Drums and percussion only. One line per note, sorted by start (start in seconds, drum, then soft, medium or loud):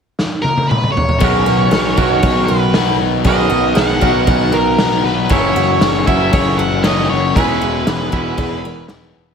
0.19 snare medium
0.44 high tom medium
0.57 high tom medium
0.71 mid tom loud
0.83 mid tom medium
0.97 floor tom loud
1.09 floor tom loud
1.21 kick loud
1.21 open hi-hat medium
1.47 snare soft
1.73 snare loud
1.73 open hi-hat medium
1.98 kick medium
2.23 kick loud
2.23 open hi-hat medium
2.74 snare loud
2.74 open hi-hat medium
3.25 kick loud
3.25 open hi-hat medium
3.77 snare loud
3.77 open hi-hat medium
4.02 kick medium
4.27 kick loud
4.27 open hi-hat medium
4.78 snare loud
4.78 open hi-hat medium
5.06 snare soft
5.30 kick loud
5.30 open hi-hat medium
5.57 snare soft
5.81 snare loud
5.81 open hi-hat medium
6.07 kick medium
6.33 kick loud
6.33 open hi-hat medium
6.84 snare loud
6.84 open hi-hat medium
7.36 kick loud
7.36 open hi-hat medium
7.87 snare loud
7.87 open hi-hat medium
8.13 kick medium
8.37 kick loud
8.37 open hi-hat medium
8.88 snare loud
8.88 open hi-hat medium